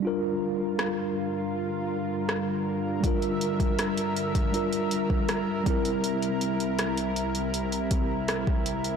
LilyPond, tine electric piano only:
\new Staff \with { instrumentName = "Tine electric piano" } { \time 4/4 \key g \dorian \tempo 4 = 80 <g d' f' bes'>1 | <g d' f' bes'>2 <g d' f' bes'>4. <g c' e' bes'>8~ | <g c' e' bes'>2.~ <g c' e' bes'>8 r8 | }